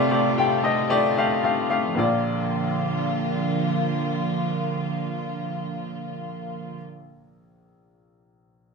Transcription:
0, 0, Header, 1, 3, 480
1, 0, Start_track
1, 0, Key_signature, -2, "major"
1, 0, Tempo, 532387
1, 1771, Time_signature, 4, 2, 24, 8
1, 7886, End_track
2, 0, Start_track
2, 0, Title_t, "Upright piano"
2, 0, Program_c, 0, 0
2, 0, Control_c, 0, 64, 127
2, 0, Note_on_c, 0, 48, 53
2, 0, Note_on_c, 0, 57, 76
2, 0, Note_on_c, 0, 67, 67
2, 0, Note_on_c, 0, 74, 84
2, 0, Note_on_c, 0, 77, 64
2, 95, Note_off_c, 0, 57, 0
2, 95, Note_on_c, 0, 57, 61
2, 98, Note_off_c, 0, 67, 0
2, 98, Note_on_c, 0, 67, 55
2, 103, Note_off_c, 0, 74, 0
2, 103, Note_on_c, 0, 74, 64
2, 297, Note_off_c, 0, 48, 0
2, 322, Note_off_c, 0, 57, 0
2, 323, Note_off_c, 0, 67, 0
2, 325, Note_off_c, 0, 74, 0
2, 337, Note_on_c, 0, 57, 60
2, 339, Note_on_c, 0, 67, 59
2, 345, Note_on_c, 0, 79, 67
2, 556, Note_off_c, 0, 57, 0
2, 558, Note_off_c, 0, 67, 0
2, 567, Note_off_c, 0, 79, 0
2, 569, Note_on_c, 0, 57, 61
2, 572, Note_on_c, 0, 67, 52
2, 576, Note_on_c, 0, 75, 61
2, 795, Note_off_c, 0, 57, 0
2, 795, Note_off_c, 0, 67, 0
2, 802, Note_off_c, 0, 75, 0
2, 808, Note_on_c, 0, 57, 77
2, 809, Note_on_c, 0, 67, 66
2, 814, Note_on_c, 0, 74, 89
2, 1038, Note_off_c, 0, 57, 0
2, 1038, Note_off_c, 0, 67, 0
2, 1041, Note_off_c, 0, 74, 0
2, 1057, Note_on_c, 0, 57, 66
2, 1061, Note_on_c, 0, 67, 57
2, 1065, Note_off_c, 0, 77, 0
2, 1065, Note_on_c, 0, 77, 71
2, 1280, Note_off_c, 0, 57, 0
2, 1284, Note_off_c, 0, 67, 0
2, 1286, Note_off_c, 0, 77, 0
2, 1293, Note_on_c, 0, 57, 62
2, 1297, Note_on_c, 0, 67, 54
2, 1303, Note_on_c, 0, 77, 66
2, 1516, Note_off_c, 0, 57, 0
2, 1522, Note_off_c, 0, 67, 0
2, 1523, Note_off_c, 0, 77, 0
2, 1530, Note_on_c, 0, 57, 59
2, 1536, Note_on_c, 0, 67, 53
2, 1536, Note_on_c, 0, 77, 67
2, 1757, Note_on_c, 0, 58, 50
2, 1759, Note_off_c, 0, 57, 0
2, 1762, Note_off_c, 0, 67, 0
2, 1762, Note_off_c, 0, 77, 0
2, 1776, Note_on_c, 0, 34, 50
2, 1776, Note_on_c, 0, 65, 46
2, 1781, Control_c, 0, 64, 0
2, 1792, Note_on_c, 0, 74, 62
2, 1929, Control_c, 0, 64, 127
2, 6065, Note_off_c, 0, 58, 0
2, 6084, Note_off_c, 0, 34, 0
2, 6085, Note_off_c, 0, 65, 0
2, 6101, Note_off_c, 0, 74, 0
2, 7875, Control_c, 0, 64, 0
2, 7886, End_track
3, 0, Start_track
3, 0, Title_t, "String section"
3, 0, Program_c, 1, 48
3, 0, Note_on_c, 1, 48, 64
3, 0, Note_on_c, 1, 55, 64
3, 0, Note_on_c, 1, 57, 63
3, 0, Note_on_c, 1, 65, 74
3, 1733, Note_off_c, 1, 48, 0
3, 1733, Note_off_c, 1, 57, 0
3, 1735, Note_off_c, 1, 55, 0
3, 1740, Note_off_c, 1, 65, 0
3, 1772, Note_on_c, 1, 53, 48
3, 1773, Note_on_c, 1, 50, 58
3, 1773, Note_on_c, 1, 58, 49
3, 1774, Note_on_c, 1, 65, 61
3, 6080, Note_off_c, 1, 53, 0
3, 6081, Note_off_c, 1, 58, 0
3, 6082, Note_off_c, 1, 50, 0
3, 6083, Note_off_c, 1, 65, 0
3, 7886, End_track
0, 0, End_of_file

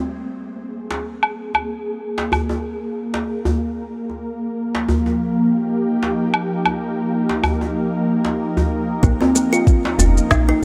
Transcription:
0, 0, Header, 1, 6, 480
1, 0, Start_track
1, 0, Tempo, 638298
1, 1031, Time_signature, 4, 2, 24, 8
1, 8003, End_track
2, 0, Start_track
2, 0, Title_t, "Ambient pad"
2, 0, Program_c, 0, 92
2, 0, Note_on_c, 0, 58, 85
2, 0, Note_on_c, 0, 60, 85
2, 0, Note_on_c, 0, 68, 63
2, 324, Note_off_c, 0, 60, 0
2, 2953, Note_off_c, 0, 68, 0
2, 3344, Note_on_c, 0, 53, 75
2, 3826, Note_on_c, 0, 67, 65
2, 3933, Note_on_c, 0, 63, 83
2, 6787, Note_off_c, 0, 67, 0
2, 8003, Note_off_c, 0, 53, 0
2, 8003, Note_off_c, 0, 58, 0
2, 8003, Note_off_c, 0, 63, 0
2, 8003, End_track
3, 0, Start_track
3, 0, Title_t, "Kalimba"
3, 0, Program_c, 1, 108
3, 6790, Note_on_c, 1, 58, 86
3, 6867, Note_off_c, 1, 58, 0
3, 6923, Note_on_c, 1, 60, 71
3, 7025, Note_off_c, 1, 60, 0
3, 7033, Note_on_c, 1, 58, 78
3, 7153, Note_off_c, 1, 58, 0
3, 7164, Note_on_c, 1, 65, 98
3, 7500, Note_off_c, 1, 65, 0
3, 7513, Note_on_c, 1, 61, 72
3, 7741, Note_off_c, 1, 61, 0
3, 7750, Note_on_c, 1, 63, 80
3, 7872, Note_off_c, 1, 63, 0
3, 7886, Note_on_c, 1, 63, 99
3, 7981, Note_off_c, 1, 63, 0
3, 8003, End_track
4, 0, Start_track
4, 0, Title_t, "FM bass"
4, 0, Program_c, 2, 39
4, 6792, Note_on_c, 2, 34, 104
4, 6874, Note_off_c, 2, 34, 0
4, 7511, Note_on_c, 2, 29, 86
4, 7669, Note_off_c, 2, 29, 0
4, 7753, Note_on_c, 2, 34, 102
4, 7910, Note_off_c, 2, 34, 0
4, 8003, End_track
5, 0, Start_track
5, 0, Title_t, "Djembe"
5, 681, Note_on_c, 9, 62, 59
5, 756, Note_off_c, 9, 62, 0
5, 1158, Note_on_c, 9, 63, 34
5, 1234, Note_off_c, 9, 63, 0
5, 1638, Note_on_c, 9, 62, 60
5, 1713, Note_off_c, 9, 62, 0
5, 1744, Note_on_c, 9, 64, 75
5, 1819, Note_off_c, 9, 64, 0
5, 1875, Note_on_c, 9, 63, 63
5, 1950, Note_off_c, 9, 63, 0
5, 2360, Note_on_c, 9, 62, 53
5, 2435, Note_off_c, 9, 62, 0
5, 2596, Note_on_c, 9, 64, 83
5, 2672, Note_off_c, 9, 64, 0
5, 3080, Note_on_c, 9, 63, 31
5, 3155, Note_off_c, 9, 63, 0
5, 3570, Note_on_c, 9, 62, 58
5, 3645, Note_off_c, 9, 62, 0
5, 3674, Note_on_c, 9, 64, 81
5, 3749, Note_off_c, 9, 64, 0
5, 3805, Note_on_c, 9, 63, 56
5, 3880, Note_off_c, 9, 63, 0
5, 4532, Note_on_c, 9, 62, 57
5, 4607, Note_off_c, 9, 62, 0
5, 5002, Note_on_c, 9, 63, 33
5, 5078, Note_off_c, 9, 63, 0
5, 5485, Note_on_c, 9, 62, 54
5, 5560, Note_off_c, 9, 62, 0
5, 5591, Note_on_c, 9, 64, 88
5, 5666, Note_off_c, 9, 64, 0
5, 5723, Note_on_c, 9, 63, 62
5, 5799, Note_off_c, 9, 63, 0
5, 6201, Note_on_c, 9, 62, 55
5, 6276, Note_off_c, 9, 62, 0
5, 6445, Note_on_c, 9, 64, 90
5, 6520, Note_off_c, 9, 64, 0
5, 6930, Note_on_c, 9, 63, 79
5, 7005, Note_off_c, 9, 63, 0
5, 7409, Note_on_c, 9, 62, 64
5, 7484, Note_off_c, 9, 62, 0
5, 7510, Note_on_c, 9, 64, 86
5, 7585, Note_off_c, 9, 64, 0
5, 8003, End_track
6, 0, Start_track
6, 0, Title_t, "Drums"
6, 923, Note_on_c, 9, 77, 71
6, 998, Note_off_c, 9, 77, 0
6, 1164, Note_on_c, 9, 77, 66
6, 1239, Note_off_c, 9, 77, 0
6, 1750, Note_on_c, 9, 77, 64
6, 1825, Note_off_c, 9, 77, 0
6, 4765, Note_on_c, 9, 77, 67
6, 4840, Note_off_c, 9, 77, 0
6, 5005, Note_on_c, 9, 77, 63
6, 5080, Note_off_c, 9, 77, 0
6, 5592, Note_on_c, 9, 77, 65
6, 5667, Note_off_c, 9, 77, 0
6, 6792, Note_on_c, 9, 36, 96
6, 6797, Note_on_c, 9, 82, 32
6, 6867, Note_off_c, 9, 36, 0
6, 6872, Note_off_c, 9, 82, 0
6, 7035, Note_on_c, 9, 82, 74
6, 7110, Note_off_c, 9, 82, 0
6, 7170, Note_on_c, 9, 82, 45
6, 7246, Note_off_c, 9, 82, 0
6, 7272, Note_on_c, 9, 36, 112
6, 7275, Note_on_c, 9, 82, 29
6, 7347, Note_off_c, 9, 36, 0
6, 7350, Note_off_c, 9, 82, 0
6, 7516, Note_on_c, 9, 82, 77
6, 7592, Note_off_c, 9, 82, 0
6, 7652, Note_on_c, 9, 82, 41
6, 7727, Note_off_c, 9, 82, 0
6, 7752, Note_on_c, 9, 38, 78
6, 7753, Note_on_c, 9, 36, 98
6, 7757, Note_on_c, 9, 82, 32
6, 7827, Note_off_c, 9, 38, 0
6, 7828, Note_off_c, 9, 36, 0
6, 7832, Note_off_c, 9, 82, 0
6, 8003, End_track
0, 0, End_of_file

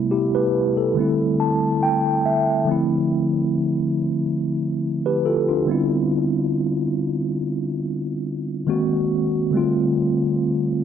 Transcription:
0, 0, Header, 1, 2, 480
1, 0, Start_track
1, 0, Tempo, 857143
1, 1500, Time_signature, 4, 2, 24, 8
1, 6072, End_track
2, 0, Start_track
2, 0, Title_t, "Tine electric piano"
2, 0, Program_c, 0, 4
2, 0, Control_c, 0, 64, 127
2, 0, Note_on_c, 0, 48, 76
2, 0, Note_on_c, 0, 55, 66
2, 0, Note_on_c, 0, 57, 68
2, 0, Note_on_c, 0, 59, 66
2, 0, Note_on_c, 0, 64, 82
2, 60, Note_off_c, 0, 64, 0
2, 63, Note_on_c, 0, 67, 64
2, 66, Note_on_c, 0, 64, 57
2, 185, Note_off_c, 0, 67, 0
2, 186, Note_off_c, 0, 64, 0
2, 195, Note_on_c, 0, 71, 70
2, 198, Note_on_c, 0, 67, 57
2, 420, Note_off_c, 0, 71, 0
2, 422, Note_off_c, 0, 67, 0
2, 433, Note_on_c, 0, 69, 64
2, 514, Note_off_c, 0, 48, 0
2, 518, Note_off_c, 0, 55, 0
2, 523, Note_off_c, 0, 57, 0
2, 527, Note_off_c, 0, 59, 0
2, 527, Note_on_c, 0, 50, 68
2, 536, Note_on_c, 0, 55, 63
2, 544, Note_on_c, 0, 57, 62
2, 548, Control_c, 0, 64, 0
2, 553, Note_on_c, 0, 60, 62
2, 561, Note_on_c, 0, 64, 74
2, 654, Control_c, 0, 64, 127
2, 659, Note_off_c, 0, 69, 0
2, 784, Note_on_c, 0, 81, 67
2, 1005, Note_off_c, 0, 81, 0
2, 1023, Note_on_c, 0, 79, 70
2, 1245, Note_off_c, 0, 79, 0
2, 1264, Note_on_c, 0, 76, 68
2, 1474, Note_off_c, 0, 50, 0
2, 1479, Note_off_c, 0, 55, 0
2, 1483, Note_off_c, 0, 57, 0
2, 1484, Note_on_c, 0, 50, 74
2, 1485, Note_off_c, 0, 76, 0
2, 1487, Note_off_c, 0, 60, 0
2, 1492, Note_off_c, 0, 64, 0
2, 1493, Note_on_c, 0, 53, 68
2, 1502, Note_on_c, 0, 57, 67
2, 1507, Control_c, 0, 64, 0
2, 1510, Note_on_c, 0, 60, 69
2, 1519, Note_on_c, 0, 64, 84
2, 1599, Control_c, 0, 64, 127
2, 2451, Note_off_c, 0, 64, 0
2, 2833, Note_on_c, 0, 71, 66
2, 2835, Note_on_c, 0, 67, 57
2, 2936, Note_off_c, 0, 71, 0
2, 2937, Note_off_c, 0, 67, 0
2, 2944, Note_on_c, 0, 69, 71
2, 2947, Note_on_c, 0, 65, 56
2, 3065, Note_off_c, 0, 65, 0
2, 3065, Note_off_c, 0, 69, 0
2, 3072, Note_on_c, 0, 65, 62
2, 3075, Note_on_c, 0, 62, 51
2, 3150, Note_off_c, 0, 50, 0
2, 3154, Note_off_c, 0, 53, 0
2, 3159, Note_off_c, 0, 57, 0
2, 3162, Note_off_c, 0, 60, 0
2, 3166, Note_on_c, 0, 50, 71
2, 3174, Note_on_c, 0, 55, 68
2, 3183, Note_on_c, 0, 59, 65
2, 3188, Control_c, 0, 64, 0
2, 3192, Note_on_c, 0, 60, 69
2, 3199, Note_on_c, 0, 64, 76
2, 3289, Control_c, 0, 64, 127
2, 3299, Note_off_c, 0, 65, 0
2, 3300, Note_off_c, 0, 62, 0
2, 4830, Note_off_c, 0, 50, 0
2, 4835, Note_off_c, 0, 55, 0
2, 4839, Note_off_c, 0, 59, 0
2, 4843, Note_off_c, 0, 60, 0
2, 4847, Note_off_c, 0, 64, 0
2, 4854, Note_on_c, 0, 51, 71
2, 4859, Note_on_c, 0, 56, 66
2, 4862, Note_on_c, 0, 58, 67
2, 4867, Control_c, 0, 64, 0
2, 4867, Note_on_c, 0, 60, 68
2, 4871, Note_on_c, 0, 66, 80
2, 4976, Control_c, 0, 64, 127
2, 5326, Note_on_c, 0, 50, 77
2, 5335, Note_on_c, 0, 55, 71
2, 5337, Note_off_c, 0, 51, 0
2, 5339, Note_off_c, 0, 56, 0
2, 5341, Note_off_c, 0, 58, 0
2, 5342, Note_on_c, 0, 57, 72
2, 5343, Note_off_c, 0, 60, 0
2, 5346, Note_off_c, 0, 66, 0
2, 5348, Control_c, 0, 64, 0
2, 5351, Note_on_c, 0, 60, 72
2, 5360, Note_on_c, 0, 65, 85
2, 5449, Control_c, 0, 64, 127
2, 6072, Note_off_c, 0, 50, 0
2, 6072, Note_off_c, 0, 55, 0
2, 6072, Note_off_c, 0, 57, 0
2, 6072, Note_off_c, 0, 60, 0
2, 6072, Note_off_c, 0, 65, 0
2, 6072, End_track
0, 0, End_of_file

